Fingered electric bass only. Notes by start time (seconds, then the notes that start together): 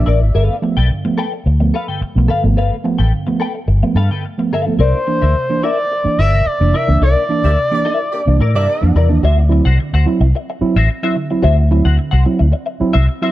0.07 A1
0.21 G#1
0.35 G1
0.77 B1
1.46 D2
2.01 muted fingered electric bass stroke
2.16 B1
2.44 G#1
2.57 G1
2.99 A1
3.68 G1
3.95 G2
4.79 C2
5.22 D2
6.05 muted fingered electric bass stroke
6.19 G1
6.46 muted fingered electric bass stroke
6.61 F1
6.89 C#2
7.01 C2
7.44 D2
8.27 C2
8.40 A2
8.55 G2
8.83 F2
8.95 E2
9.10 D#2
9.23 D2
9.66 C2
9.93 D2
10.21 C2
10.61 muted fingered electric bass stroke
10.76 A1
11.44 D2
11.85 D2
12.13 C2
12.40 D2
12.81 muted fingered electric bass stroke
12.95 C2